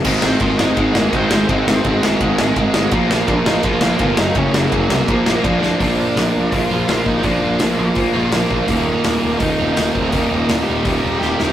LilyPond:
<<
  \new Staff \with { instrumentName = "Lead electric guitar" } { \time 4/4 \key bes \mixolydian \tempo 4 = 167 r8 <c' c''>8 <f' f''>8 <ees' ees''>4 <bes bes'>8 <c' c''>8 <c' c''>8~ | <c' c''>4. r2 r8 | r4 <d' d''>8 <ees' ees''>8 <f' f''>8 <f' f''>4 <ees' ees''>8 | <des' des''>8 <bes bes'>2~ <bes bes'>8 <d' d''>4 |
<d' d''>2 <f' f''>4 <f' f''>8 <ees' ees''>8 | <d' d''>4 r8 <bes bes'>4. <bes bes'>4 | <bes bes'>2 <ees' ees''>4 <ees' ees''>8 <c' c''>8 | <bes bes'>4 r8 <g g'>4. <g' g''>4 | }
  \new Staff \with { instrumentName = "Overdriven electric guitar" } { \clef bass \time 4/4 \key bes \mixolydian <aes, ees aes>8 <aes, ees aes>8 <aes, ees aes>8 <aes, ees aes>8 <aes, ees aes>8 <aes, ees aes>8 <aes, ees aes>8 <aes, ees aes>8 | <aes, ees aes>8 <aes, ees aes>8 <aes, ees aes>8 <aes, ees aes>8 <aes, ees aes>8 <aes, ees aes>8 <aes, ees aes>8 <aes, ees aes>8 | <bes, f bes>8 <bes, f bes>8 <bes, f bes>8 <bes, f bes>8 <bes, f bes>8 <bes, f bes>8 <bes, f bes>8 <ges, des ges>8 | <ges, des ges>8 <ges, des ges>8 <ges, des ges>8 <ges, des ges>8 <bes, f bes>8 <bes, f bes>8 <bes, f bes>8 <bes, f bes>8 |
<bes, f bes d' f'>2~ <bes, f bes d' f'>8 <bes, f bes d' f'>8 <bes, f bes d' f'>4 | <bes, f bes d' f'>2~ <bes, f bes d' f'>8 <bes, f bes d' f'>8 <bes, f bes d' f'>4 | <ees, bes, ees g bes ees'>2~ <ees, bes, ees g bes ees'>8 <ees, bes, ees g bes ees'>8 <ees, bes, ees g bes ees'>4 | <ees, bes, ees g bes ees'>2~ <ees, bes, ees g bes ees'>8 <ees, bes, ees g bes ees'>8 <ees, bes, ees g bes ees'>4 | }
  \new Staff \with { instrumentName = "Distorted electric guitar" } { \clef bass \time 4/4 \key bes \mixolydian <aes, ees aes>8 <aes, ees aes>8 <aes, ees aes>8 <aes, ees aes>8 <aes, ees aes>8 <aes, ees aes>8 <aes, ees aes>8 <aes, ees aes>8 | <aes, ees aes>8 <aes, ees aes>8 <aes, ees aes>8 <aes, ees aes>8 <aes, ees aes>8 <aes, ees aes>8 <aes, ees aes>8 <aes, ees aes>8 | <bes, f bes>8 <bes, f bes>8 <bes, f bes>8 <bes, f bes>8 <bes, f bes>8 <bes, f bes>8 <bes, f bes>8 <ges, des ges>8 | <ges, des ges>8 <ges, des ges>8 <ges, des ges>8 <ges, des ges>8 <bes, f bes>8 <bes, f bes>8 <bes, f bes>8 <bes, f bes>8 |
<bes, f bes>2 <bes, f bes>2 | <bes, f bes>2 <bes, f bes>2 | <ees, bes, ees>2 <ees, bes, ees>2 | <ees, bes, ees>2 <ees, bes, ees>2 | }
  \new Staff \with { instrumentName = "Distorted electric guitar" } { \clef bass \time 4/4 \key bes \mixolydian <aes, ees aes>1 | <aes, ees aes>1 | <bes, f bes>2.~ <bes, f bes>8 <ges, des ges>8~ | <ges, des ges>2 <bes, f bes>2 |
<bes, f bes>2.~ <bes, f bes>8 <bes, f bes>8 | <bes, f bes>2.~ <bes, f bes>8 <bes, f bes>8 | <ees, bes, ees>2.~ <ees, bes, ees>8 <ees, bes, ees>8 | <ees, bes, ees>2.~ <ees, bes, ees>8 <ees, bes, ees>8 | }
  \new Staff \with { instrumentName = "Picked electric bass" } { \clef bass \time 4/4 \key bes \mixolydian aes,,8 aes,,8 aes,,8 aes,,8 aes,,8 aes,,8 aes,,8 aes,,8 | aes,,8 aes,,8 aes,,8 aes,,8 aes,,8 aes,,8 aes,,8 aes,,8 | bes,,8 bes,,8 bes,,8 bes,,8 bes,,8 bes,,8 g,,8 ges,,8 | ges,,8 ges,,8 ges,,8 c,8 bes,,8 bes,,8 bes,,8 bes,,8 |
bes,,4 bes,,8 bes,,8 bes,,8 bes,,8 bes,,8 bes,,8 | bes,,8 bes,,8 bes,,8 bes,,8 bes,,8 bes,,8 bes,,8 bes,,8 | ees,,4 ees,,8 ees,,8 ees,,8 ees,,8 ees,,8 ees,,8 | ees,,8 ees,,8 ees,,8 ees,,8 ees,,8 ees,,8 ees,,8 ees,,8 | }
  \new DrumStaff \with { instrumentName = "Drums" } \drummode { \time 4/4 <cymc bd>8 sn8 <bd cymr>8 sn8 <bd cymr>8 sn8 <bd cymr>8 sn8 | <bd cymr>8 sn8 <bd cymr>8 sn8 <bd cymr>8 sn8 <bd cymr>8 sn8 | <bd cymr>8 sn8 <bd cymr>8 sn8 <bd cymr>8 sn8 <bd cymr>8 sn8 | <bd cymr>8 sn8 <bd cymr>8 sn8 <bd cymr>8 sn8 <bd cymr>8 sn8 |
<hho bd>4 <hho sn>4 <hho bd>4 <hho sn>8 bd8 | <hho bd>4 <hho sn>4 <hho bd>4 <hho sn>8 bd8 | <hho bd>4 <hho sn>4 <hho bd>4 <hho sn>8 bd8 | <hho bd>4 <hho sn>4 <hho bd>4 sn8 sn8 | }
>>